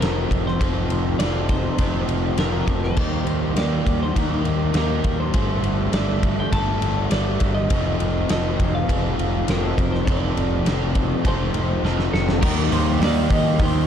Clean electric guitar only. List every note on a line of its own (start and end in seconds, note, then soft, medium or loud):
0.01 0.47 A#4 medium
0.47 1.19 C5 medium
1.19 1.50 D5 medium
1.50 2.38 C5 medium
2.39 2.84 A#4 medium
2.84 3.58 C5 medium
3.58 4.02 D5 loud
4.03 4.19 C5 medium
4.19 4.76 A#4 medium
4.77 5.20 A#4 medium
5.20 5.89 C5 medium
5.94 6.39 D5 medium
6.40 6.52 G5 loud
6.53 7.07 A5 loud
7.12 7.54 D5 medium
7.55 8.29 D#5 loud
8.31 8.75 D#5 loud
8.75 9.50 F5 loud
9.50 9.94 A#4 medium
9.92 10.05 C5 medium
10.05 11.27 D5 loud
11.28 11.81 C5 medium
12.13 12.41 A4 medium
12.41 12.72 A#4 loud
12.73 13.02 C5 loud
13.04 13.33 D5 loud
13.34 13.62 D#5 loud
13.63 13.87 C5 loud